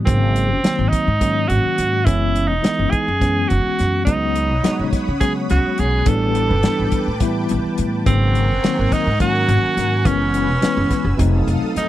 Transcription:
0.04 G#1 C#3 D#3 F#3 A#3 C4, kick, closed hi-hat
0.36 closed hi-hat
0.51 F#1
0.63 D#3 F#3 A#3 C4, muted upright bass stroke, snare, closed hi-hat
0.79 G#1
0.89 D#4, kick
0.93 closed hi-hat
1.07 G#2
1.20 D#3 F#3 A#3 C#4, kick, closed hi-hat
1.48 G#1 F#4, closed hi-hat
1.78 G#2, closed hi-hat
2.05 F#1 E3 G#3 B3 C#4 E4, kick, closed hi-hat
2.36 closed hi-hat
2.48 E1 D#4
2.62 E3 G#3 B3 D#4, muted upright bass stroke, snare, closed hi-hat
2.79 F#1
2.91 G#4, muted upright bass stroke, kick, closed hi-hat
3.08 F#2
3.20 E3 G#3 B3 C#4, kick, snare, closed hi-hat
3.48 F#1 F#4, closed hi-hat
3.66 muted upright bass stroke
3.79 F#2, snare, closed hi-hat
4.05 C#2 F#3 G#3 B3 D#4 C#5 F#5 B5 D#6, kick, closed hi-hat
4.36 closed hi-hat
4.51 B1
4.63 F#3 G#3 B3 D#4, muted upright bass stroke, snare, closed hi-hat
4.79 C#2
4.93 muted upright bass stroke, kick, snare, closed hi-hat
5.08 C#3
5.20 F#3 G#3 B3 C#4 G#4, kick, snare, closed hi-hat
5.50 C#2 F#4, snare, closed hi-hat
5.65 muted upright bass stroke
5.78 B1 G#4, closed hi-hat
6.06 A1 E3 G3 B3 D4 A4 B4 G5 A5 D6, kick, closed hi-hat
6.35 closed hi-hat
6.50 G1
6.63 E3 G3 B3 D4, muted upright bass stroke, snare, closed hi-hat
6.80 A1
6.92 muted upright bass stroke, kick, closed hi-hat
7.08 A2
7.20 E3 G3 B3 E4, kick, snare, closed hi-hat
7.49 A1, closed hi-hat
7.65 muted upright bass stroke
7.78 A2, closed hi-hat
8.06 G#1 C#3 D#3 F#3 A#3 C4 A#4 F#5 G#5 C#6, kick, closed hi-hat
8.35 closed hi-hat
8.50 F#1
8.64 D#3 F#3 A#3 C4, muted upright bass stroke, snare, closed hi-hat
8.79 G#1
8.92 D#4, kick, snare, closed hi-hat
9.07 G#2
9.20 D#3 F#3 A#3 C#4 F#4, kick, closed hi-hat
9.48 G#1, closed hi-hat
9.63 muted upright bass stroke
9.77 G#2, snare, closed hi-hat
10.05 F#1 E3 G#3 B3 C#4 B4 E6, kick, closed hi-hat
10.34 closed hi-hat
10.49 E1
10.61 E3 G#3 B3 C#4, muted upright bass stroke, snare, closed hi-hat
10.77 F#1
10.91 muted upright bass stroke, kick, snare, closed hi-hat
11.05 F#1
11.17 F1 F#3 A3 C4 D#4 A4 F5 D#6, kick, closed hi-hat
11.47 F1, closed hi-hat
11.62 muted upright bass stroke
11.76 F2 D#4, snare, closed hi-hat

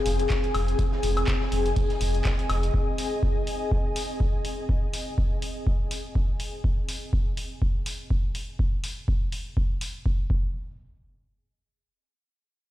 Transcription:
Already playing: C4 G#4 F5 G#5
0.06 F1, closed hi-hat, open hi-hat
0.20 closed hi-hat
0.30 kick, snare, clap, closed hi-hat
0.44 closed hi-hat
0.54 F1, closed hi-hat, open hi-hat, high woodblock
0.68 D#5, closed hi-hat
0.79 kick, closed hi-hat
0.92 snare
1.03 F1, closed hi-hat, open hi-hat
1.17 closed hi-hat, high woodblock
1.27 kick, snare, clap, closed hi-hat
1.42 snare
1.52 F1, closed hi-hat, open hi-hat
1.66 closed hi-hat
1.76 kick, closed hi-hat, open hi-hat
1.90 snare, closed hi-hat
2.01 F1, closed hi-hat, open hi-hat
2.15 closed hi-hat
2.25 kick, snare, clap, closed hi-hat
2.39 closed hi-hat
2.50 F1, closed hi-hat, open hi-hat, high woodblock
2.63 closed hi-hat
2.74 kick
2.98 open hi-hat
3.23 kick
3.47 open hi-hat
3.72 kick
3.96 open hi-hat
4.20 kick
4.45 open hi-hat
4.69 kick
4.93 open hi-hat
5.18 kick
5.42 open hi-hat
5.67 kick
5.91 open hi-hat
6.15 kick
6.40 open hi-hat
6.64 kick
6.89 open hi-hat
7.13 kick
7.37 open hi-hat
7.62 kick
7.86 open hi-hat
8.11 kick
8.35 open hi-hat
8.59 kick
8.84 open hi-hat
9.08 kick
9.32 open hi-hat
9.57 kick
9.81 open hi-hat
10.06 kick
10.30 kick

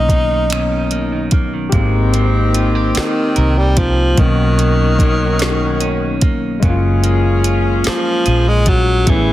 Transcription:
Already playing: B1 B2 D#3 F#3 A#3 C#4 D#4
0.09 A#3, kick, closed hi-hat
0.31 D#3
0.50 B2 C#4, finger snap, closed hi-hat
0.72 D#3
0.91 A#3, closed hi-hat
1.12 D#3
1.31 A#3, kick, closed hi-hat
1.54 D#3
1.69 G#1 D#3 G#3 A#3 C4 G4, kick, closed hi-hat
1.76 C4 D#4
2.14 C4, closed hi-hat
2.54 F4, closed hi-hat
2.75 G4
2.95 D#3 C4, muted fingered electric bass stroke, snare, closed hi-hat
3.36 C2 A#4, closed hi-hat
3.58 G3
3.76 F3 G4, kick, closed hi-hat
4.15 B1 B2 D#3 F#3 A#3 C#4 F#4, kick, closed hi-hat
4.20 D#3 C#4
4.25 D#4
4.58 D#3, closed hi-hat
4.99 A#3, kick, closed hi-hat
5.39 D#3, snare, closed hi-hat
5.81 C#4, closed hi-hat
6.21 A#3, kick, closed hi-hat
6.60 F#1 F#3 G#3 A#3 C#4 F4 G#4, kick, closed hi-hat
6.66 C#4 F4
7.04 A#3, closed hi-hat
7.44 F4, closed hi-hat
7.84 F3 A#3, muted fingered electric bass stroke, snare, closed hi-hat
8.26 A#1 G#4, closed hi-hat
8.48 G#3
8.66 F#3 F4, kick, closed hi-hat
9.04 A1 A3 B3 E4 G#4 B4, kick, closed hi-hat
9.09 E3 C#4
9.14 E4

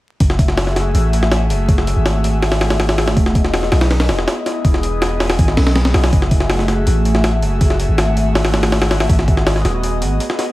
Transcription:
0.20 F#1 A3 F#4 G#4 E5, kick, open hi-hat
0.30 snare
0.39 kick, open hi-hat
0.48 snare
0.57 snare, open hi-hat
0.67 snare
0.76 snare, open hi-hat
0.94 A1, open hi-hat
1.13 open hi-hat
1.23 snare
1.32 snare, open hi-hat
1.49 F#1 A3 F#4 G#4 E5, open hi-hat
1.68 F#1 A3 F#4 G#4 E5, kick, open hi-hat
1.78 snare
1.87 open hi-hat
1.96 G#1
2.06 snare, open hi-hat
2.24 open hi-hat
2.42 snare, open hi-hat
2.52 snare, open hi-hat
2.61 snare, open hi-hat
2.70 snare, open hi-hat
2.80 snare, open hi-hat
2.89 snare, open hi-hat
2.98 A3 F#4 G#4 E5, snare, open hi-hat
3.08 snare, open hi-hat
3.17 E1 B3 E4 G#4 D#5, kick, open hi-hat
3.26 snare
3.35 kick, open hi-hat
3.44 snare
3.54 snare, open hi-hat
3.63 snare
3.72 B1, snare, open hi-hat
3.81 snare, open hi-hat
3.91 snare, open hi-hat
4.00 snare, open hi-hat
4.09 E1, snare, open hi-hat
4.19 snare
4.28 snare, open hi-hat
4.46 B3 E4 G#4 D#5, snare, open hi-hat
4.64 E1 B3 E4 G#4 D#5, kick, open hi-hat
4.74 snare
4.83 open hi-hat
5.02 snare, open hi-hat
5.20 snare, open hi-hat
5.30 snare, open hi-hat
5.39 G#1, kick, open hi-hat
5.48 snare
5.57 B1, snare, open hi-hat
5.67 snare, open hi-hat
5.76 snare, open hi-hat
5.85 B3 E4 G#4 D#5, snare, open hi-hat
5.94 B1, snare, open hi-hat
6.04 snare, open hi-hat
6.12 F#1 A3 F#4 G#4 E5, kick, open hi-hat
6.22 snare
6.31 kick, open hi-hat
6.40 snare
6.50 snare, open hi-hat
6.59 snare
6.68 snare, open hi-hat
6.87 A1, open hi-hat
7.05 open hi-hat
7.15 snare
7.24 snare, open hi-hat
7.42 F#1 A3 F#4 G#4 E5, open hi-hat
7.60 F#1 A3 F#4 G#4 E5, kick, open hi-hat
7.70 snare
7.80 open hi-hat
7.89 G#1
7.98 snare, open hi-hat
8.17 open hi-hat
8.35 snare, open hi-hat
8.45 snare, open hi-hat
8.54 snare, open hi-hat
8.63 snare, open hi-hat
8.72 snare, open hi-hat
8.82 snare, open hi-hat
8.90 A3 F#4 G#4 E5, snare, open hi-hat
9.00 snare, open hi-hat
9.09 G#1 B3 F#4 G#4 D#5, kick, open hi-hat
9.19 snare
9.28 kick, open hi-hat
9.37 snare
9.47 snare, open hi-hat
9.56 snare
9.65 D#1, snare, open hi-hat
9.83 open hi-hat
10.02 G#1, open hi-hat
10.20 open hi-hat
10.30 snare
10.39 B3 F#4 G#4 D#5, snare, open hi-hat

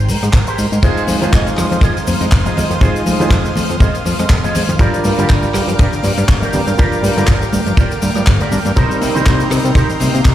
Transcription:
Already playing: G#1 A#4 G5 C6
0.08 G#2, muted clean electric guitar stroke, open hi-hat, shaker
0.23 G#2, cross-stick, closed hi-hat, shaker
0.33 G#1, kick, clap, closed hi-hat, shaker
0.47 G4 G#4 A#4 C5, closed hi-hat, shaker
0.58 G#2, open hi-hat, shaker
0.72 G#2, closed hi-hat, shaker
0.82 F1 D#3 G#3 D#4 F4 G#4 C5 D#5 F5 D#6, kick, closed hi-hat, crash, shaker
0.97 F3, closed hi-hat, shaker
1.07 F2 G#3, open hi-hat, high conga, shaker
1.21 F2 D#3 G#3 D#4 F4 G#4 C5 D#5, closed hi-hat, shaker
1.33 F1 F3, kick, clap, closed hi-hat, shaker
1.47 G#3, closed hi-hat, shaker
1.57 F2 D#3, cross-stick, clap, open hi-hat, shaker
1.71 F2 F3, closed hi-hat, shaker
1.81 F1 G#3 F4 G#4 C5 D#5, kick, cross-stick, closed hi-hat, shaker
1.96 D#3, closed hi-hat, shaker
2.07 F2 F3, muted clean electric guitar stroke, open hi-hat, high conga, shaker
2.21 F2 G#3, closed hi-hat, shaker
2.32 F1 D#3, kick, clap, closed hi-hat, shaker
2.46 F3 F4 G#4 C5 D#5, closed hi-hat, high conga, shaker
2.57 F2 G#3, open hi-hat, low conga, shaker
2.71 F2 D#3, closed hi-hat, shaker
2.81 F1 D#3 G#3 D#4 F4 G#4 C5 D#5, kick, closed hi-hat, shaker
2.95 F3, closed hi-hat, shaker
3.06 F2 G#3, open hi-hat, high conga, shaker
3.20 F2 D#3 G#3 D#4 F4 G#4 C5 D#5, closed hi-hat, shaker
3.31 F1 F3, kick, clap, closed hi-hat, shaker
3.45 G#3, closed hi-hat, shaker
3.56 F2 D#3, open hi-hat, high conga, shaker
3.70 F2 F3, closed hi-hat, shaker
3.80 F1 G#3 F4 G#4 C5 D#5, kick, closed hi-hat, shaker
3.94 D#3, closed hi-hat, shaker
4.05 F2 F3, muted clean electric guitar stroke, open hi-hat, high conga, shaker
4.19 F2 G#3, cross-stick, closed hi-hat, shaker
4.29 F1 D#3, kick, clap, closed hi-hat, shaker
4.44 F3 F4 G#4 C5 D#5, closed hi-hat, high conga, shaker
4.55 F2 G#3, open hi-hat, low conga, shaker
4.69 F2 D#3, closed hi-hat, shaker
4.79 G1 G3 D4 F4 G4 A#4 D5 G5 D6, kick, closed hi-hat, shaker
4.94 F3, closed hi-hat, shaker
5.04 G2 G3, open hi-hat, high conga, shaker
5.18 G2 D3 G3 D4 F4 G4 A#4 D5, closed hi-hat, shaker
5.29 G1 F3, kick, clap, closed hi-hat, shaker
5.42 G3, closed hi-hat, shaker
5.54 G2 D3, cross-stick, clap, open hi-hat, shaker
5.68 G2 F3, closed hi-hat, shaker
5.78 G1 G3 F4 G4 A#4 D5, kick, cross-stick, closed hi-hat, shaker
5.93 D3, closed hi-hat, shaker
6.03 G2 F3, muted clean electric guitar stroke, open hi-hat, high conga, shaker
6.17 G2 G3, closed hi-hat, shaker
6.29 G1 D3, kick, clap, closed hi-hat, shaker
6.42 F3 F4 G4 A#4 D5, closed hi-hat, high conga, shaker
6.53 G2 G3, open hi-hat, low conga, shaker
6.67 G2 D3, closed hi-hat, shaker
6.77 G1 D3 G3 D4 F4 G4 A#4 D5, kick, closed hi-hat, shaker
6.92 F3, closed hi-hat, shaker
7.03 G2 G3, open hi-hat, high conga, shaker
7.16 G2 D3 G3 D4 F4 G4 A#4 D5, closed hi-hat, shaker
7.27 G1 F3, kick, clap, closed hi-hat, shaker
7.42 G3, closed hi-hat, shaker
7.52 G2 D3, open hi-hat, high conga, shaker
7.66 G2 F3, closed hi-hat, shaker
7.77 G1 G3 F4 G4 A#4 D5, kick, closed hi-hat, shaker
7.91 D3, closed hi-hat, shaker
8.02 G2 D3, muted clean electric guitar stroke, open hi-hat, high conga, shaker
8.15 G2 F3, cross-stick, closed hi-hat, shaker
8.27 G1 D3, kick, clap, closed hi-hat, shaker
8.40 D3 F4 G4 A#4 D5, closed hi-hat, high conga, shaker
8.51 G2 D4, open hi-hat, low conga, shaker
8.65 G2 A#3, closed hi-hat, shaker
8.76 C2 D#3 G3 C4 D#4 G4 A#4 C5 D#5 C6, kick, closed hi-hat, shaker
8.90 G3, closed hi-hat, shaker
9.01 C3 A#3, open hi-hat, high conga, shaker
9.14 C3 D#3 G3 C4 D#4 G4 A#4 C5, closed hi-hat, shaker
9.26 C2 C4, kick, clap, closed hi-hat, shaker
9.40 A#3, closed hi-hat, shaker
9.51 C3 D#3, cross-stick, clap, open hi-hat, shaker
9.65 C3 G3, closed hi-hat, shaker
9.75 C2 A#3 D#4 G4 A#4 C5, kick, cross-stick, closed hi-hat, shaker
9.89 D#3, closed hi-hat, shaker
10.00 C3 G3, muted clean electric guitar stroke, open hi-hat, high conga, shaker
10.14 C3 A#3, closed hi-hat, shaker
10.25 C2 D#3, kick, clap, closed hi-hat, shaker

